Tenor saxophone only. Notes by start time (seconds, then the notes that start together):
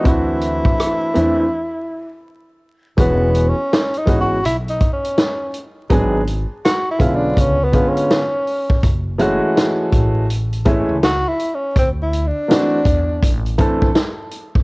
0.07 E4
3.00 B3
3.49 C#4
3.97 D#4
4.20 F#4
4.45 E4
4.69 D#4
4.93 C#4
6.65 F#4
6.90 E4
7.14 D4
7.40 C#4
7.64 B3
7.89 C#4
11.04 F#4
11.28 E4
11.54 C#4
11.78 C4
12.02 E4
12.27 D4